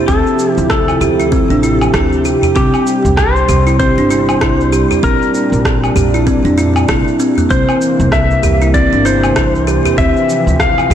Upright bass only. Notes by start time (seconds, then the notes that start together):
0.08 D2
0.58 D2
1.01 D2
1.50 A1
1.94 D2
2.56 C2
3.05 C2
3.49 C2
3.98 G1
4.41 C2
5.03 A#1
5.52 A#1
5.96 A#1
6.45 F2
6.89 F1
7.51 C2
8.00 C2
8.43 C2
8.92 G1
9.36 C2
9.98 D2
10.47 D2
10.90 D2